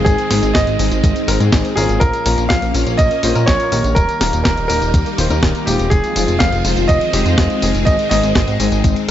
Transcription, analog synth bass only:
0.06 0.17 G#1 loud
0.31 0.41 G#1 medium
0.43 0.53 G#1 medium
0.55 0.65 G#1 loud
0.67 0.78 G#1 medium
0.79 0.90 G#1 loud
0.91 1.02 G#1 medium
1.04 1.14 G#1 loud
1.28 1.39 G#1 loud
1.40 1.51 G#2 medium
1.52 1.63 G#1 loud
1.77 1.87 G#1 medium
1.89 2.00 G#1 medium
2.01 2.12 A#1 loud
2.26 2.36 A#1 medium
2.38 2.48 A#1 medium
2.50 2.61 A#1 loud
2.62 2.73 A#1 medium
2.74 2.85 A#1 loud
2.87 2.97 A#1 medium
2.99 3.09 A#1 loud
3.23 3.34 A#1 loud
3.36 3.46 A#2 medium
3.48 3.58 A#1 loud
3.72 3.83 A#1 medium
3.84 3.95 A#1 medium
3.96 4.07 D#1 loud
4.21 4.31 D#1 medium
4.33 4.44 D#1 medium
4.45 4.56 D#1 loud
4.58 4.68 D#1 medium
4.70 4.80 D#1 loud
4.82 4.92 D#1 medium
4.94 5.04 D#1 loud
5.18 5.29 D#1 loud
5.31 5.41 D#2 medium
5.43 5.53 D#1 loud
5.67 5.78 D#1 loud
5.79 5.90 D#1 medium
5.91 6.02 F1 loud
6.16 6.26 F1 medium
6.28 6.39 F1 medium
6.40 6.51 F1 loud
6.53 6.63 F1 medium
6.65 6.75 F1 medium
6.77 6.87 F1 medium
6.89 7.00 F1 loud
7.13 7.24 F1 loud
7.26 7.36 F2 medium
7.38 7.48 F1 loud
7.62 7.73 F1 medium
7.74 7.85 F1 medium
7.87 7.97 G#1 loud
8.11 8.21 G#1 medium
8.23 8.34 G#1 medium
8.35 8.46 G#1 loud
8.48 8.58 G#1 medium
8.60 8.70 G#1 loud
8.72 8.82 G#1 medium
8.84 8.95 G#1 loud

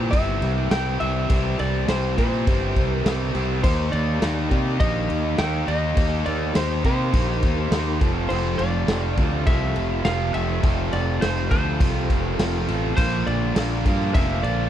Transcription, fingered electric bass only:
0.00 0.11 A#2 medium
0.13 0.40 G1 loud
0.42 0.69 C2 medium
0.71 0.99 C2 loud
1.02 1.28 C2 medium
1.30 1.57 C2 medium
1.60 1.87 C2 medium
1.89 2.16 C2 medium
2.17 2.45 A#2 loud
2.47 2.74 G1 medium
2.76 3.03 C2 medium
3.06 3.33 C2 medium
3.35 3.62 C2 medium
3.64 3.91 D#2 medium
3.93 4.20 D#2 medium
4.22 4.49 D#2 loud
4.51 4.78 C3 loud
4.81 5.07 A#1 loud
5.11 5.37 D#2 medium
5.39 5.66 D#2 medium
5.68 5.95 D#2 medium
5.97 6.24 D#2 medium
6.27 6.53 D#2 loud
6.56 6.82 D#2 medium
6.85 7.12 C3 medium
7.13 7.41 A#1 loud
7.43 7.70 D#2 medium
7.71 7.98 D#2 medium
8.01 8.28 F1 medium
8.31 8.57 F1 medium
8.59 8.86 F1 medium
8.88 9.15 F1 medium
9.18 9.45 D2 medium
9.47 9.74 C2 loud
9.76 10.03 F1 medium
10.05 10.33 F1 medium
10.35 10.62 F1 medium
10.63 10.91 F1 medium
10.93 11.20 F1 loud
11.23 11.50 F1 loud
11.51 11.79 D2 loud
11.80 12.07 C2 medium
12.10 12.37 F1 medium
12.39 12.66 F1 loud
12.68 12.96 A1 medium
12.98 13.25 A#1 medium
13.27 13.54 A#1 medium
13.56 13.83 A#1 loud
13.86 14.13 G2 medium
14.15 14.42 F1 loud
14.43 14.69 A#1 medium

